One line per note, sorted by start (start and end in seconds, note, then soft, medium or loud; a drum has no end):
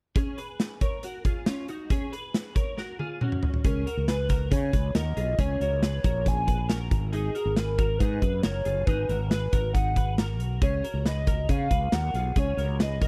0.16 0.38 C#4 medium
0.16 0.37 G#4 medium
0.16 kick medium
0.16 closed hi-hat medium
0.38 0.79 G#4 soft
0.38 0.79 B4 medium
0.38 closed hi-hat medium
0.60 snare medium
0.60 closed hi-hat medium
0.81 1.02 A#4 soft
0.81 1.03 C#5 medium
0.81 kick medium
0.81 closed hi-hat medium
1.03 1.25 F#4 medium
1.03 1.25 A#4 medium
1.03 closed hi-hat medium
1.25 1.45 F4 soft
1.25 1.46 G#4 medium
1.25 kick medium
1.25 closed hi-hat soft
1.46 1.69 C#4 soft
1.46 1.68 F4 medium
1.46 snare loud
1.46 closed hi-hat medium
1.68 1.91 D#4 soft
1.68 1.90 F#4 medium
1.68 closed hi-hat medium
1.90 2.13 C#4 medium
1.90 2.12 G#4 medium
1.90 kick medium
1.90 closed hi-hat medium
2.12 2.54 G#4 soft
2.12 2.53 B4 medium
2.12 closed hi-hat medium
2.34 snare medium
2.34 closed hi-hat medium
2.55 2.76 A#4 soft
2.55 2.77 C#5 medium
2.55 kick medium
2.55 closed hi-hat medium
2.77 3.00 F#4 medium
2.77 2.99 A#4 medium
2.77 snare soft
2.99 3.21 F4 medium
2.99 3.21 G#4 medium
2.99 high tom soft
3.21 3.62 C#4 medium
3.21 3.62 F#4 medium
3.21 mid tom medium
3.32 mid tom medium
3.43 floor tom medium
3.54 floor tom medium
3.64 3.83 C#2 medium
3.64 3.87 C#4 medium
3.64 3.87 G#4 medium
3.64 4.05 A#4 medium
3.64 kick medium
3.64 closed hi-hat medium
3.86 4.09 F#4 soft
3.86 4.08 A#4 medium
3.86 closed hi-hat medium
3.97 4.49 C#2 medium
4.08 4.30 G#4 medium
4.08 4.29 B4 medium
4.08 4.49 B4 medium
4.08 snare medium
4.08 closed hi-hat medium
4.28 4.51 F#4 soft
4.28 4.52 A#4 medium
4.28 kick medium
4.28 snare soft
4.28 closed hi-hat medium
4.51 4.70 C#3 medium
4.51 4.74 C#4 medium
4.51 4.73 G#4 medium
4.51 4.92 C#5 medium
4.51 kick medium
4.51 closed hi-hat medium
4.73 4.92 C#2 medium
4.73 4.95 G#4 soft
4.73 4.95 B4 medium
4.73 kick medium
4.73 closed hi-hat medium
4.95 5.14 D#2 medium
4.95 5.16 F#4 medium
4.95 5.17 A#4 medium
4.95 5.41 D#5 medium
4.95 snare loud
4.95 closed hi-hat medium
5.17 5.35 B1 medium
5.17 5.39 F4 soft
5.17 5.38 G#4 medium
5.17 closed hi-hat medium
5.38 5.57 C#2 medium
5.38 5.61 C#4 medium
5.38 5.61 G#4 loud
5.38 5.61 C#5 medium
5.38 kick medium
5.38 closed hi-hat medium
5.60 5.98 C#2 medium
5.60 5.83 F#4 medium
5.60 5.82 A#4 medium
5.60 5.81 C#5 medium
5.60 closed hi-hat medium
5.83 6.04 G#4 medium
5.83 6.04 B4 medium
5.83 6.29 C#5 medium
5.83 snare loud
5.83 closed hi-hat medium
6.04 6.87 A#1 medium
6.04 6.25 F#4 soft
6.04 6.26 A#4 medium
6.04 kick medium
6.04 closed hi-hat medium
6.26 6.48 C#4 soft
6.26 6.47 G#4 medium
6.26 6.71 G#5 loud
6.26 kick medium
6.26 closed hi-hat medium
6.47 6.69 G#4 soft
6.47 6.68 B4 medium
6.47 kick medium
6.47 closed hi-hat medium
6.69 7.11 F#4 soft
6.69 7.10 A#4 medium
6.69 snare loud
6.69 closed hi-hat medium
6.91 7.28 G#1 medium
6.91 kick medium
6.91 closed hi-hat medium
7.13 7.35 D#4 medium
7.13 7.35 G#4 medium
7.13 7.54 G#4 medium
7.13 closed hi-hat medium
7.35 7.57 F#4 soft
7.35 7.56 A#4 medium
7.35 closed hi-hat medium
7.45 7.97 G#1 medium
7.56 7.79 G#4 medium
7.56 8.00 A#4 medium
7.56 7.78 B4 medium
7.56 snare medium
7.56 closed hi-hat medium
7.78 8.00 F#4 medium
7.78 8.00 A#4 medium
7.78 kick medium
7.78 closed hi-hat medium
7.98 8.19 G#2 medium
7.98 8.23 D#4 medium
7.98 8.22 G#4 medium
7.98 8.42 B4 medium
7.98 kick medium
7.98 closed hi-hat medium
8.22 8.41 F#2 medium
8.22 8.44 G#4 soft
8.22 8.43 B4 medium
8.22 kick medium
8.22 closed hi-hat medium
8.42 8.63 F#1 medium
8.42 8.65 F#4 medium
8.42 8.66 A#4 medium
8.42 8.84 C#5 medium
8.42 snare loud
8.42 closed hi-hat medium
8.65 8.84 F#1 medium
8.65 8.88 F4 medium
8.65 8.86 G#4 medium
8.65 closed hi-hat medium
8.86 9.06 G#1 medium
8.86 9.10 D#4 medium
8.86 9.09 G#4 loud
8.86 9.07 B4 medium
8.86 kick medium
8.86 closed hi-hat medium
9.07 9.46 G#1 medium
9.07 9.32 F#4 soft
9.07 9.31 A#4 medium
9.07 9.18 B4 medium
9.07 closed hi-hat medium
9.29 9.54 G#4 medium
9.29 9.71 B4 medium
9.29 9.53 B4 medium
9.29 snare medium
9.29 closed hi-hat medium
9.53 10.39 G#1 medium
9.53 9.74 F#4 medium
9.53 9.75 A#4 medium
9.53 kick medium
9.53 closed hi-hat medium
9.73 9.97 D#4 soft
9.73 9.97 G#4 medium
9.73 10.15 F#5 medium
9.73 kick medium
9.73 closed hi-hat medium
9.96 10.19 G#4 soft
9.96 10.18 B4 medium
9.96 kick medium
9.96 closed hi-hat medium
10.18 10.60 F#4 soft
10.18 10.59 A#4 medium
10.18 snare medium
10.18 closed hi-hat medium
10.39 10.58 B1 medium
10.39 closed hi-hat medium
10.62 10.80 C#2 medium
10.62 10.84 C#4 medium
10.62 10.84 G#4 medium
10.62 11.02 C#5 medium
10.62 kick medium
10.62 closed hi-hat medium
10.84 11.06 F#4 medium
10.84 11.05 A#4 medium
10.84 closed hi-hat medium
10.94 11.46 C#2 medium
11.06 11.28 G#4 medium
11.06 11.27 B4 medium
11.06 11.47 D#5 medium
11.06 snare medium
11.06 closed hi-hat medium
11.27 11.49 F#4 soft
11.27 11.49 A#4 medium
11.27 kick medium
11.27 closed hi-hat medium
11.49 11.68 C#3 medium
11.49 11.71 C#4 soft
11.49 11.70 G#4 medium
11.49 11.96 F5 loud
11.49 kick medium
11.49 closed hi-hat medium
11.71 11.89 C#2 medium
11.71 11.93 G#4 soft
11.71 11.92 B4 medium
11.71 kick medium
11.71 closed hi-hat medium
11.92 12.11 D#2 medium
11.92 12.14 F#4 medium
11.92 12.14 A#4 medium
11.92 12.37 F#5 medium
11.92 snare loud
11.92 closed hi-hat medium
12.14 12.33 B1 medium
12.14 12.36 F4 medium
12.14 12.35 G#4 medium
12.14 closed hi-hat medium
12.36 12.55 C#2 medium
12.36 12.58 C#4 medium
12.36 12.58 G#4 loud
12.36 12.78 C#5 medium
12.36 kick medium
12.36 closed hi-hat medium
12.57 13.02 C#2 medium
12.57 12.80 F#4 soft
12.57 12.79 A#4 medium
12.57 closed hi-hat medium
12.79 13.02 G#4 medium
12.79 13.01 B4 medium
12.79 13.08 D#5 loud
12.79 snare medium
12.79 closed hi-hat medium
13.01 13.08 A#1 medium
13.01 13.08 F#4 medium
13.01 13.08 A#4 medium
13.01 kick medium
13.01 snare soft
13.01 closed hi-hat medium